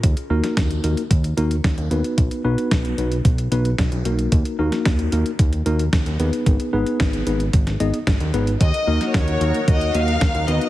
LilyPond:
<<
  \new Staff \with { instrumentName = "Violin section" } { \time 4/4 \key ees \minor \tempo 4 = 112 r1 | r1 | r1 | r1 |
ees''4 des''4 ees''8 f''4 ees''8 | }
  \new Staff \with { instrumentName = "String machine" } { \time 4/4 \key ees \minor r1 | r1 | r1 | r1 |
<ees' ges' bes'>1 | }
  \new Staff \with { instrumentName = "Tine electric piano" } { \time 4/4 \key ees \minor r8 <bes ees' ges' bes'>4 <bes ees' ges' bes'>8 r8 <bes ees' ges' bes'>8 r8 <ces' ees' ges' ces''>8~ | <ces' ees' ges' ces''>8 <b dis' fis' b'>4 <b dis' fis' b'>8 r8 <b dis' fis' b'>8 r8 <bes dis' fis' bes'>8~ | <bes dis' fis' bes'>8 <bes ees' ges' bes'>4 <bes ees' ges' bes'>8 r8 <bes ees' ges' bes'>8 r8 <ces' ees' aes' ces''>8~ | <ces' ees' aes' ces''>8 <ces' ees' aes' ces''>4 <ces' ees' aes' ces''>8 r8 <ces' ees' aes' ees''>8 r8 <ces' ees' aes' ces''>8 |
r8 <bes ees' ges' bes'>4 <bes ees' ges' bes'>8 r8 <bes ees' ges' bes'>8 r8 <ces' ees' ges' ces''>8 | }
  \new Staff \with { instrumentName = "Analog synth bass" } { \clef bass \time 4/4 \key ees \minor ees,16 r16 ees,16 r16 ees,8 ees,16 r16 ees,8 ees,8 ees,16 ees,16 ees,16 r16 | b,,16 r16 b,,16 r16 b,,8 b,,8 b,,8 b,,8 b,,16 b,,16 b,,8 | ees,16 r16 ees,16 r16 ees,8 ees,16 r16 ees,8 ees,8 ees,16 ees,16 ees,16 r16 | aes,,16 r16 aes,,16 r16 aes,,8 aes,,8 aes,,8 aes,,16 r16 aes,,16 ees,16 aes,,8 |
ees,16 r16 ees,16 r16 ees,8 ees,16 r16 ees,8 ees,8 ees,16 ees,16 ees,16 r16 | }
  \new DrumStaff \with { instrumentName = "Drums" } \drummode { \time 4/4 <hh bd>16 hh8 <hh sn>16 <hh bd sn>16 hh16 hh16 hh16 <hh bd>16 hh16 hh16 hh16 <hh bd sn>16 hh16 hh16 hh16 | <hh bd>16 hh8 hh16 <hh bd sn>16 hh16 hh16 hh16 <hh bd>16 hh16 hh16 hh16 <hh bd sn>16 hh16 hh16 hh16 | <hh bd>16 hh8 <hh sn>16 <hh bd sn>16 hh16 hh16 hh16 <hh bd>16 hh16 hh16 hh16 <hh bd sn>16 hh16 hh16 hh16 | <hh bd>16 hh8 hh16 <hh bd sn>16 hh16 hh16 hh16 <hh bd>16 <hh sn>16 hh16 hh16 <hh bd sn>16 hh16 hh16 hh16 |
<hh bd>16 hh8 <hh sn>16 <hh bd sn>16 hh16 hh16 hh16 <hh bd>16 hh16 hh16 hh16 <hh bd sn>16 hh16 hh16 hh16 | }
>>